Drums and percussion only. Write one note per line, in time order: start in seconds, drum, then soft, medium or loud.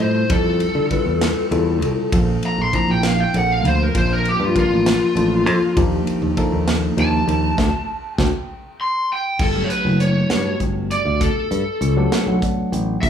0.00 ride medium
0.30 kick loud
0.30 ride medium
0.60 ride medium
0.91 kick medium
0.91 ride medium
1.21 snare loud
1.21 ride medium
1.52 ride medium
1.82 ride medium
2.12 kick loud
2.12 ride medium
2.43 ride medium
2.73 kick medium
2.73 ride medium
3.03 snare loud
3.03 ride medium
3.34 ride medium
3.65 ride medium
3.95 kick loud
3.95 ride medium
4.25 ride medium
4.56 kick medium
4.56 ride medium
4.86 snare loud
4.86 ride medium
5.17 ride medium
5.47 ride medium
5.77 kick loud
5.77 ride medium
6.07 ride medium
6.37 kick medium
6.37 ride medium
6.68 snare loud
6.68 ride medium
6.98 ride medium
7.29 ride medium
7.58 kick loud
7.58 snare loud
8.18 kick loud
8.18 snare loud
9.39 kick loud
9.39 crash medium
9.70 closed hi-hat medium
10.00 closed hi-hat medium
10.30 snare loud
10.30 closed hi-hat medium
10.60 kick medium
10.60 closed hi-hat medium
10.91 closed hi-hat medium
11.21 kick loud
11.21 closed hi-hat medium
11.51 closed hi-hat medium
11.82 closed hi-hat medium
12.12 snare loud
12.12 closed hi-hat medium
12.42 kick medium
12.42 closed hi-hat medium
12.73 closed hi-hat medium
13.03 kick loud
13.03 closed hi-hat medium